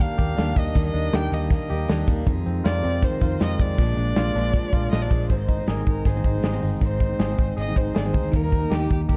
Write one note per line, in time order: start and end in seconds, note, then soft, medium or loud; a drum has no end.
0.00 0.17 D#3 medium
0.00 0.75 D#3 medium
0.00 0.17 G3 medium
0.00 0.18 A#3 medium
0.00 0.55 A#3 medium
0.00 0.19 D4 medium
0.00 0.35 D4 medium
0.00 0.17 G4 medium
0.00 0.61 F5 loud
0.00 snare soft
0.00 closed hi-hat loud
0.18 0.34 D#2 loud
0.18 0.35 D#3 medium
0.18 0.36 G3 medium
0.18 0.37 A#3 medium
0.18 0.38 D4 medium
0.18 1.12 G4 medium
0.18 kick medium
0.18 closed hi-hat medium
0.36 0.53 D#2 loud
0.36 0.54 D#3 medium
0.36 0.55 G3 medium
0.36 0.56 A#3 medium
0.36 0.93 D4 medium
0.36 0.57 D4 medium
0.36 snare loud
0.36 closed hi-hat medium
0.56 0.72 D#2 medium
0.56 0.73 D#3 medium
0.56 0.74 G3 medium
0.56 1.50 A#3 medium
0.56 0.74 A#3 medium
0.56 0.75 D4 medium
0.56 0.86 D#5 medium
0.56 kick loud
0.56 open hi-hat medium
0.74 0.91 D#2 loud
0.74 1.31 D#3 medium
0.74 2.27 D#3 medium
0.74 1.32 G3 medium
0.74 1.32 A#3 medium
0.74 1.33 D4 medium
0.74 kick loud
0.74 closed hi-hat medium
0.87 1.16 D#5 medium
0.94 1.10 D#2 loud
0.94 1.32 D4 medium
0.94 closed hi-hat medium
1.13 1.29 D#2 loud
1.13 1.69 G4 medium
1.13 1.35 G5 loud
1.13 snare loud
1.13 closed hi-hat medium
1.31 1.55 D#2 loud
1.31 1.69 D#3 medium
1.31 1.69 G3 medium
1.31 1.70 A#3 medium
1.31 1.70 D4 medium
1.31 1.52 D#5 medium
1.31 closed hi-hat medium
1.50 2.07 A#3 medium
1.50 2.05 D#5 medium
1.50 kick loud
1.50 snare soft
1.50 closed hi-hat loud
1.69 1.86 D#2 loud
1.69 1.87 D#3 medium
1.69 1.88 G3 medium
1.69 1.89 A#3 medium
1.69 1.90 D4 medium
1.69 2.30 G4 medium
1.69 closed hi-hat medium
1.88 2.05 D#2 medium
1.88 2.05 D#3 medium
1.88 2.06 G3 medium
1.88 2.08 A#3 medium
1.88 2.31 D4 medium
1.88 2.08 D4 medium
1.88 snare loud
1.88 closed hi-hat medium
2.07 2.23 D#2 loud
2.07 2.26 D#3 medium
2.07 2.27 G3 medium
2.07 2.31 A#3 medium
2.07 2.27 A#3 medium
2.07 2.27 D4 medium
2.07 kick loud
2.07 open hi-hat medium
2.26 2.83 F2 medium
2.26 3.78 F2 medium
2.26 2.42 F2 loud
2.26 2.81 C3 medium
2.26 2.82 D#3 medium
2.26 2.84 G#3 medium
2.26 2.84 D#4 loud
2.26 kick loud
2.26 closed hi-hat medium
2.46 2.62 F2 loud
2.46 2.82 C4 medium
2.46 closed hi-hat medium
2.64 2.81 F2 loud
2.64 3.21 F4 medium
2.64 3.06 D5 loud
2.64 snare loud
2.64 closed hi-hat medium
2.82 3.07 F2 loud
2.82 3.19 C3 medium
2.82 3.20 D#3 medium
2.82 3.22 G#3 medium
2.82 3.39 C4 medium
2.82 3.22 D#4 medium
2.82 closed hi-hat medium
3.03 3.82 D#3 medium
3.03 3.44 C5 loud
3.03 kick medium
3.03 snare soft
3.03 closed hi-hat loud
3.21 3.37 F2 loud
3.21 3.39 C3 medium
3.21 3.40 D#3 medium
3.21 3.41 G#3 medium
3.21 3.41 D#4 medium
3.21 3.82 F4 medium
3.21 kick medium
3.21 closed hi-hat medium
3.40 3.56 F2 loud
3.40 3.59 C3 medium
3.40 3.60 D#3 medium
3.40 3.60 G#3 medium
3.40 3.82 C4 medium
3.40 3.60 D#4 medium
3.40 3.63 D#5 loud
3.40 snare loud
3.40 closed hi-hat medium
3.59 3.75 F2 medium
3.59 3.78 C3 medium
3.59 3.79 D#3 medium
3.59 4.00 G#3 medium
3.59 3.79 G#3 medium
3.59 3.80 D#4 medium
3.59 4.91 D5 loud
3.59 kick loud
3.59 open hi-hat medium
3.78 3.94 A#1 loud
3.78 5.30 A#2 medium
3.78 4.34 A#2 medium
3.78 4.35 F3 medium
3.78 4.37 G#3 medium
3.78 4.36 D4 medium
3.78 kick loud
3.78 closed hi-hat medium
3.97 4.13 A#1 loud
3.97 4.34 D4 medium
3.97 closed hi-hat medium
4.16 4.32 A#1 loud
4.16 4.72 F4 medium
4.16 snare loud
4.16 closed hi-hat medium
4.35 4.58 A#1 loud
4.35 4.71 A#2 medium
4.35 4.72 F3 medium
4.35 4.74 G#3 medium
4.35 4.90 D4 medium
4.35 4.74 D4 medium
4.35 closed hi-hat medium
4.54 5.33 F3 medium
4.54 kick medium
4.54 snare soft
4.54 closed hi-hat loud
4.73 4.88 A#1 loud
4.73 4.91 A#2 medium
4.73 4.91 F3 medium
4.73 4.92 G#3 medium
4.73 4.93 D4 medium
4.73 5.33 F4 medium
4.73 kick loud
4.73 closed hi-hat medium
4.91 5.08 A#1 loud
4.91 5.09 A#2 medium
4.91 5.10 F3 medium
4.91 5.10 G#3 medium
4.91 5.33 D4 medium
4.91 5.11 D4 medium
4.91 5.03 D#5 medium
4.91 snare loud
4.91 closed hi-hat medium
5.02 5.29 D5 medium
5.10 5.26 A#1 loud
5.10 5.29 A#2 medium
5.10 5.29 F3 medium
5.10 8.61 G#3 medium
5.10 5.29 G#3 medium
5.10 5.30 D4 medium
5.10 kick loud
5.10 open hi-hat medium
5.29 5.61 G#1 loud
5.29 5.58 G#2 medium
5.29 6.81 G#2 medium
5.29 5.58 D#3 medium
5.29 5.58 G#3 medium
5.29 5.58 C4 medium
5.29 5.57 D#4 medium
5.29 5.39 C5 medium
5.29 kick medium
5.29 closed hi-hat medium
5.39 5.70 C5 medium
5.48 5.86 D#4 medium
5.48 kick medium
5.48 closed hi-hat medium
5.58 5.79 G#3 soft
5.58 5.77 C4 soft
5.58 5.76 D#4 soft
5.67 5.83 G#1 loud
5.67 6.05 G#4 medium
5.67 5.87 A#4 medium
5.67 snare medium
5.67 closed hi-hat medium
5.77 6.15 G#3 soft
5.77 6.15 C4 medium
5.77 6.15 D#4 soft
5.87 6.02 G#1 medium
5.87 6.26 D#4 soft
5.87 6.09 A#4 medium
5.87 kick medium
5.87 closed hi-hat medium
6.05 6.21 G#1 medium
6.05 6.43 G#4 medium
6.05 6.63 C5 medium
6.05 kick medium
6.05 snare soft
6.05 closed hi-hat loud
6.15 6.35 G#2 medium
6.15 6.35 D#3 medium
6.15 6.35 G#3 medium
6.15 6.34 C4 medium
6.15 6.33 D#4 medium
6.24 6.40 G#1 loud
6.24 6.62 D#4 medium
6.24 kick medium
6.24 closed hi-hat medium
6.34 6.53 G#3 soft
6.34 6.52 C4 medium
6.34 6.52 D#4 medium
6.43 6.59 G#1 medium
6.43 7.18 G#4 medium
6.43 snare loud
6.43 closed hi-hat medium
6.53 6.80 G#2 medium
6.53 6.81 D#3 medium
6.53 6.81 G#3 medium
6.53 6.82 C4 medium
6.53 6.81 D#4 medium
6.63 6.78 G1 medium
6.63 7.01 D#4 medium
6.63 open hi-hat medium
6.81 7.12 G#1 medium
6.81 7.10 G#2 medium
6.81 8.34 G#2 medium
6.81 7.10 D#3 medium
6.81 7.10 G#3 medium
6.81 7.10 C4 medium
6.81 7.08 D#4 medium
6.81 7.54 C5 medium
6.81 kick loud
6.81 closed hi-hat medium
7.00 7.37 D#4 medium
7.00 kick medium
7.00 closed hi-hat medium
7.09 7.30 G#3 soft
7.09 7.29 C4 soft
7.09 7.27 D#4 soft
7.19 7.35 G#1 loud
7.19 7.56 G#4 medium
7.19 snare loud
7.19 closed hi-hat medium
7.29 7.67 G#3 medium
7.29 7.66 C4 medium
7.29 7.66 D#4 medium
7.37 7.54 G#1 medium
7.37 7.75 D#4 medium
7.37 kick medium
7.37 closed hi-hat medium
7.57 7.72 G#1 loud
7.57 7.93 G#4 medium
7.57 7.79 D#5 medium
7.57 closed hi-hat loud
7.67 7.87 G#2 soft
7.67 7.87 D#3 medium
7.67 7.86 G#3 medium
7.67 7.86 C4 medium
7.67 7.85 D#4 medium
7.76 7.92 G#1 medium
7.76 8.13 D#4 medium
7.76 7.99 C5 medium
7.76 kick medium
7.76 closed hi-hat medium
7.86 8.04 G#3 soft
7.86 8.03 C4 medium
7.86 8.03 D#4 soft
7.95 8.11 G#1 medium
7.95 8.37 G#4 medium
7.95 8.06 D5 medium
7.95 snare loud
7.95 closed hi-hat medium
8.04 8.34 G#2 medium
8.04 8.32 D#3 medium
8.04 8.33 G#3 medium
8.04 8.33 C4 medium
8.04 8.33 D#4 medium
8.04 8.37 C5 medium
8.14 8.30 D2 medium
8.14 8.51 D#4 medium
8.14 kick medium
8.14 open hi-hat medium
8.32 8.65 D#2 loud
8.32 9.17 D#3 medium
8.32 8.62 D#3 medium
8.32 8.62 G3 medium
8.32 8.62 A#3 medium
8.32 8.60 D#4 medium
8.32 8.43 A#4 loud
8.32 kick loud
8.32 closed hi-hat medium
8.44 8.75 A#4 medium
8.51 8.89 D#4 medium
8.51 kick medium
8.51 closed hi-hat medium
8.61 8.82 G3 soft
8.61 8.80 A#3 soft
8.61 8.79 D#4 soft
8.70 8.87 D#2 loud
8.70 9.08 G4 medium
8.70 8.91 G4 medium
8.70 snare medium
8.70 closed hi-hat medium
8.80 9.17 G3 soft
8.80 9.17 A#3 soft
8.80 9.17 D#4 medium
8.89 9.06 D#2 medium
8.89 9.17 D#4 medium
8.89 9.01 G4 medium
8.89 kick medium
8.89 closed hi-hat medium
9.09 9.17 D#2 loud
9.09 9.17 G4 medium
9.09 9.17 A#4 medium
9.09 kick medium
9.09 closed hi-hat loud